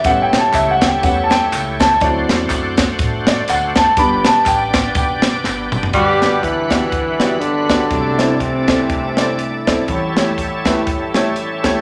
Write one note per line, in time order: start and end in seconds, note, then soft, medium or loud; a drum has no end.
0.04 0.28 A1 loud
0.04 1.01 G3 medium
0.04 1.98 A3 medium
0.04 1.02 B3 soft
0.04 1.02 C#4 medium
0.04 1.98 E4 medium
0.04 1.98 G4 medium
0.04 0.12 C5 medium
0.04 0.22 F#5 medium
0.04 kick loud
0.04 closed hi-hat medium
0.04 tambourine medium
0.11 2.01 C#5 medium
0.22 0.38 G5 medium
0.33 0.51 B1 medium
0.33 snare loud
0.33 closed hi-hat medium
0.33 tambourine medium
0.38 0.55 A5 medium
0.53 0.96 C#2 loud
0.53 0.71 E5 medium
0.53 kick medium
0.53 clap medium
0.53 closed hi-hat medium
0.53 tambourine loud
0.71 0.87 F#5 medium
0.81 kick medium
0.81 snare loud
0.81 closed hi-hat medium
0.81 tambourine medium
0.87 1.04 G5 medium
1.03 1.45 E2 medium
1.03 1.28 G3 soft
1.03 1.28 B3 soft
1.03 1.28 C#4 medium
1.03 1.24 F#5 medium
1.03 kick loud
1.03 closed hi-hat medium
1.03 tambourine medium
1.24 1.31 A5 medium
1.30 1.82 G5 loud
1.30 snare loud
1.30 closed hi-hat medium
1.30 tambourine soft
1.52 1.94 C#2 medium
1.52 clap medium
1.52 closed hi-hat medium
1.52 tambourine medium
1.79 2.02 A5 medium
1.79 kick medium
1.79 snare loud
1.79 closed hi-hat medium
1.79 tambourine medium
2.00 2.25 D2 loud
2.00 2.74 F#3 medium
2.00 3.94 A3 medium
2.00 2.74 C4 soft
2.00 3.94 D4 medium
2.00 2.75 E4 medium
2.00 3.94 F#4 medium
2.00 3.94 C5 medium
2.00 2.74 D5 medium
2.00 kick loud
2.00 closed hi-hat medium
2.00 tambourine medium
2.29 2.47 E2 loud
2.29 snare loud
2.29 closed hi-hat medium
2.29 tambourine medium
2.50 2.92 F#2 medium
2.50 kick medium
2.50 clap loud
2.50 closed hi-hat medium
2.50 tambourine loud
2.77 kick medium
2.77 snare loud
2.77 closed hi-hat medium
2.77 tambourine medium
2.99 3.41 A2 medium
2.99 kick loud
2.99 closed hi-hat medium
2.99 tambourine medium
3.27 3.49 D5 medium
3.27 snare loud
3.27 closed hi-hat medium
3.27 tambourine medium
3.48 3.72 D2 loud
3.48 3.78 F#5 medium
3.48 clap medium
3.48 closed hi-hat medium
3.48 tambourine medium
3.75 3.94 F#2 medium
3.75 3.98 A5 medium
3.75 kick medium
3.75 snare loud
3.75 closed hi-hat medium
3.75 tambourine medium
3.97 4.21 G1 loud
3.97 4.71 G3 medium
3.97 5.90 B3 medium
3.97 4.71 B3 medium
3.97 5.90 D4 medium
3.97 4.71 D4 medium
3.97 5.90 G4 medium
3.97 5.90 D5 medium
3.97 4.27 B5 loud
3.97 kick loud
3.97 closed hi-hat medium
3.97 tambourine medium
4.25 4.43 B1 medium
4.25 4.45 A5 medium
4.25 snare loud
4.25 closed hi-hat medium
4.25 tambourine medium
4.46 4.88 A1 medium
4.46 4.95 G5 medium
4.46 kick medium
4.46 clap loud
4.46 closed hi-hat medium
4.46 tambourine loud
4.73 kick medium
4.73 snare loud
4.73 closed hi-hat medium
4.73 tambourine medium
4.95 5.37 B1 loud
4.95 5.22 G5 medium
4.95 kick loud
4.95 closed hi-hat medium
4.95 tambourine medium
5.22 snare loud
5.22 closed hi-hat medium
5.22 tambourine medium
5.44 5.86 G1 medium
5.44 snare medium
5.44 clap medium
5.44 tambourine medium
5.72 mid tom medium
5.72 tambourine medium
5.83 floor tom medium
5.93 7.87 G1 medium
5.93 7.87 G2 medium
5.93 7.89 D3 medium
5.93 6.44 G3 loud
5.93 7.87 B3 medium
5.93 7.89 B3 medium
5.93 6.43 B3 medium
5.93 7.87 D4 soft
5.93 7.89 D4 medium
5.93 6.89 D4 medium
5.93 6.40 G4 loud
5.93 6.01 A#4 soft
5.93 7.87 F#5 soft
5.93 kick medium
5.93 closed hi-hat medium
6.00 7.90 B4 medium
6.21 6.35 B3 medium
6.21 6.35 F#4 medium
6.21 6.35 G4 soft
6.21 6.35 D5 medium
6.21 snare medium
6.21 closed hi-hat medium
6.42 7.41 E3 medium
6.42 7.38 B3 medium
6.42 7.37 E4 medium
6.42 kick medium
6.42 closed hi-hat medium
6.70 6.84 B3 medium
6.70 6.84 F#4 medium
6.70 6.84 G4 medium
6.70 6.84 D5 medium
6.70 kick medium
6.70 snare medium
6.70 closed hi-hat medium
6.92 kick loud
6.92 closed hi-hat medium
7.20 7.33 B3 medium
7.20 7.33 F#4 medium
7.20 7.33 G4 medium
7.20 7.33 D5 medium
7.20 snare medium
7.20 closed hi-hat medium
7.40 8.41 D3 medium
7.40 8.37 F#3 medium
7.40 8.37 B3 medium
7.40 8.40 D4 medium
7.40 closed hi-hat medium
7.69 7.83 B3 medium
7.69 7.83 F#4 medium
7.69 7.83 G4 medium
7.69 7.83 D5 medium
7.69 kick medium
7.69 snare loud
7.69 closed hi-hat medium
7.91 9.85 C2 medium
7.91 9.84 C3 medium
7.91 9.87 C3 medium
7.91 9.85 A3 medium
7.91 11.81 A3 medium
7.91 9.85 D4 soft
7.91 9.87 D4 medium
7.91 9.84 E4 soft
7.91 11.81 E4 medium
7.91 9.85 D5 medium
7.91 kick medium
7.91 closed hi-hat medium
8.19 8.32 C4 medium
8.19 8.32 E4 medium
8.19 8.32 A4 medium
8.19 8.32 D5 medium
8.19 snare medium
8.19 closed hi-hat medium
8.39 9.66 C3 medium
8.39 9.63 E3 medium
8.39 9.63 A3 medium
8.39 9.66 C4 medium
8.39 kick medium
8.39 closed hi-hat medium
8.68 8.81 C4 medium
8.68 8.82 E4 medium
8.68 8.82 A4 medium
8.68 8.82 D5 medium
8.68 kick medium
8.68 snare loud
8.68 closed hi-hat medium
8.90 kick loud
8.90 closed hi-hat medium
9.17 9.31 C4 medium
9.17 9.31 E4 medium
9.17 9.31 A4 medium
9.17 9.31 D5 medium
9.17 snare medium
9.17 closed hi-hat medium
9.39 closed hi-hat medium
9.67 9.80 C4 medium
9.67 9.80 E4 medium
9.67 9.80 A4 medium
9.67 9.80 D5 medium
9.67 kick medium
9.67 snare loud
9.67 closed hi-hat medium
9.88 11.81 A1 medium
9.88 11.81 A2 medium
9.88 11.81 G3 medium
9.88 11.81 C#4 medium
9.88 11.81 E4 medium
9.88 11.81 G4 medium
9.88 11.81 A4 medium
9.88 kick medium
9.88 closed hi-hat medium
10.16 10.29 A3 medium
10.16 10.30 E4 medium
10.16 10.30 G4 medium
10.16 10.30 C#5 medium
10.16 snare medium
10.16 closed hi-hat medium
10.38 kick medium
10.38 closed hi-hat medium
10.65 10.79 A3 medium
10.65 10.79 E4 medium
10.65 10.79 G4 medium
10.65 10.79 B4 medium
10.65 kick medium
10.65 snare loud
10.65 closed hi-hat medium
10.87 kick loud
10.87 closed hi-hat medium
11.14 11.28 A3 medium
11.14 11.28 E4 medium
11.14 11.28 G4 medium
11.14 11.28 C#5 medium
11.14 snare medium
11.14 closed hi-hat medium
11.36 closed hi-hat medium
11.64 11.77 A3 medium
11.64 11.77 E4 medium
11.64 11.77 G4 medium
11.64 11.77 C#5 medium
11.64 kick medium
11.64 snare medium
11.64 closed hi-hat medium